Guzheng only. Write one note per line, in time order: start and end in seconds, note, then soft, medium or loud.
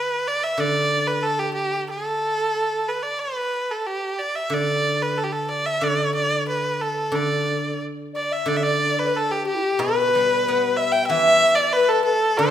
0.57 2.53 D3 soft
4.50 5.80 D3 medium
5.81 7.10 D3 soft
7.12 8.44 D3 medium
8.46 10.45 D3 medium
9.79 11.10 B2 medium
10.15 11.44 G3 soft
10.48 11.77 B3 soft
11.10 12.51 E3 medium
12.39 12.51 D3 medium